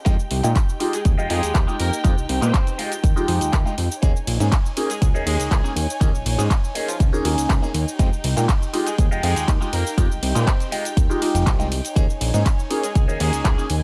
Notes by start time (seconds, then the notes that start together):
0.05 F2 G#3 D#4 F4 G4 G5, kick, closed hi-hat, shaker
0.19 shaker
0.31 C2, open hi-hat
0.43 A#2 G#3 D#4 F4 G4, closed hi-hat, shaker
0.56 kick, clap, closed hi-hat, shaker
0.69 shaker
0.80 G#3 D#4 F4 G4, open hi-hat
0.93 G#3 G#4, closed hi-hat, shaker
1.05 D#2 G#3 G#4, kick, closed hi-hat, shaker
1.17 F2 G#3 D#4 F4 G4, shaker
1.29 F2 G#3 D#4 F4 G4 G#4, open hi-hat
1.43 D#2, closed hi-hat, shaker
1.55 D#2, kick, clap, closed hi-hat, shaker
1.67 G#3 D#4 F4 G4, shaker
1.79 F2 A#3 A#4, open hi-hat
1.93 shaker
2.04 F2 G#3 D#4 F4 G4, kick, closed hi-hat, shaker
2.18 C2, shaker
2.29 C2, open hi-hat
2.41 A#2 G#3 C4 D#4 F4 G4 C5, closed hi-hat, shaker
2.54 kick, clap, closed hi-hat, shaker
2.67 closed hi-hat, shaker
2.78 G#3 D#4 F4 G4, open hi-hat
2.92 closed hi-hat, shaker
3.03 D#2, kick, closed hi-hat, shaker
3.16 F2 G#3 D#4 F4 G4, shaker
3.28 F2 G#3 D#4 F4 G4, open hi-hat
3.41 D#2, closed hi-hat, shaker
3.53 D#2, kick, clap, closed hi-hat, shaker
3.65 G#3 D#4 F4 G4, shaker
3.78 F2, open hi-hat
3.92 shaker
4.02 D#2 A#3 C#4 D#4 G#4 C#5 G#5, kick, closed hi-hat, shaker
4.16 shaker
4.27 A#1, open hi-hat, ride
4.40 G#2 A#3 C#4 D#4 G#4, closed hi-hat, shaker
4.52 kick, clap, closed hi-hat, shaker
4.66 shaker
4.77 A#3 C#4 D#4 G#4, open hi-hat, ride
4.90 G#3 G#4, closed hi-hat, shaker
5.02 C#2 G#3 G#4, kick, closed hi-hat, shaker
5.14 D#2 A#3 C#4 D#4 G#4, shaker
5.26 D#2 G#3 A#3 C#4 D#4 G#4, open hi-hat, ride
5.39 C#2, closed hi-hat, shaker
5.51 C#2 G#3 G#4, kick, clap, closed hi-hat, shaker
5.64 A#3 C#4 D#4 G#4, shaker
5.76 D#2, open hi-hat, ride
5.90 shaker
6.00 D#2 A#3 C#4 D#4 G#4, kick, closed hi-hat, shaker
6.14 A#1, shaker
6.26 A#1, open hi-hat, ride
6.38 G#2 A#3 C#4 D#4 G#4, closed hi-hat, shaker
6.50 kick, clap, closed hi-hat, shaker
6.64 shaker
6.75 A#3 C#4 D#4 G#4, open hi-hat, ride
6.88 F3 F4, closed hi-hat, shaker
7.00 C#2 F3 F4, kick, closed hi-hat, shaker
7.12 D#2 A#3 C#4 D#4 G#4, shaker
7.24 D#2 A#3 C#4 D#4 G#4, open hi-hat, ride
7.38 C#2, closed hi-hat, shaker
7.49 C#2, kick, clap, closed hi-hat, shaker
7.62 A#3 C#4 D#4 G#4, shaker
7.74 D#2, open hi-hat, ride
7.88 shaker
7.99 F2 G#3 D#4 F4 G4 G5, kick, closed hi-hat, shaker
8.13 shaker
8.24 C2, open hi-hat, ride
8.36 A#2 G#3 D#4 F4 G4, closed hi-hat, shaker
8.49 kick, clap, closed hi-hat, shaker
8.63 shaker
8.73 G#3 D#4 F4 G4, open hi-hat, ride
8.86 G#3 G#4, closed hi-hat, shaker
8.98 D#2 G#3 G#4, kick, closed hi-hat, shaker
9.11 F2 G#3 D#4 F4 G4, shaker
9.23 F2 G#3 D#4 F4 G4 G#4, open hi-hat, ride
9.36 D#2, closed hi-hat, shaker
9.48 D#2, kick, clap, closed hi-hat, shaker
9.61 G#3 D#4 F4 G4, shaker
9.73 F2 A#3 A#4, open hi-hat, ride
9.87 shaker
9.97 F2 G#3 D#4 F4 G4, kick, closed hi-hat, shaker
10.11 C2, shaker
10.22 C2, open hi-hat, ride
10.35 A#2 G#3 C4 D#4 F4 G4 C5, closed hi-hat, shaker
10.47 kick, clap, closed hi-hat, shaker
10.60 closed hi-hat, shaker
10.71 G#3 D#4 F4 G4, open hi-hat, ride
10.85 closed hi-hat, shaker
10.97 D#2, kick, closed hi-hat, shaker
11.10 G#3 D#4 F4 G4, shaker
11.21 G#3 D#4 F4 G4, open hi-hat, ride
11.34 F1, closed hi-hat, shaker
11.46 C2, kick, clap, closed hi-hat, shaker
11.59 G#3 D#4 F4 G4, closed hi-hat, shaker
11.72 open hi-hat, ride
11.85 closed hi-hat, shaker
11.95 D#2 A#3 C#4 D#4 G#4 C#5 G#5, kick, closed hi-hat, shaker
12.10 shaker
12.21 A#1, open hi-hat, ride
12.33 G#2 A#3 C#4 D#4 G#4, closed hi-hat, shaker
12.46 kick, clap, closed hi-hat, shaker
12.59 shaker
12.70 A#3 C#4 D#4 G#4, open hi-hat, ride
12.83 G#3 G#4, closed hi-hat, shaker
12.95 C#2 G#3 G#4, kick, closed hi-hat, shaker
13.08 D#2 A#3 C#4 D#4 G#4, shaker
13.20 D#2 G#3 A#3 C#4 D#4 G#4, open hi-hat, ride
13.33 closed hi-hat, shaker
13.45 C#2 G#3 G#4, kick, clap, closed hi-hat, shaker
13.57 A#3 C#4 D#4 G#4, shaker
13.70 D#2, open hi-hat, ride